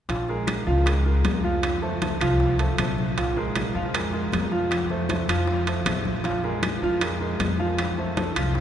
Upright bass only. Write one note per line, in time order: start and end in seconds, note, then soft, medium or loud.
0.09 0.63 A#1 medium
0.67 1.21 C#2 medium
1.24 2.15 F2 medium
2.20 2.74 C2 medium
2.78 3.69 A#1 medium
3.75 4.28 F2 medium
4.33 5.23 F2 medium
5.28 5.82 F2 medium
5.86 6.76 A#1 medium
6.82 7.36 F2 medium
7.40 8.30 F2 medium
8.36 8.60 C2 medium